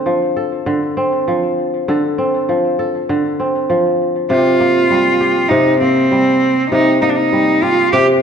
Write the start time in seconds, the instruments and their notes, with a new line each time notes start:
Already playing: kora D3 A#3 C4 A4
0.06 kora F3
0.37 kora A4
0.66 kora D3
0.97 kora C4
1.28 kora F3
1.88 kora D3 A4
2.18 kora C4
2.49 kora F3
2.79 kora A4
3.09 kora D3
3.40 kora C4
3.70 kora F3
4.30 kora C3 G4, cello F4
4.60 kora A#3
4.90 kora G3
5.21 kora G4
5.49 kora C3, cello D#4
5.80 kora A#3, cello C4
6.12 kora G3
6.70 kora C3 G4, cello D#4
7.01 kora A#3, cello D#4
7.10 cello D4
7.16 cello D#4
7.33 kora G3
7.63 cello F4, kora G4
7.92 kora C3, cello G4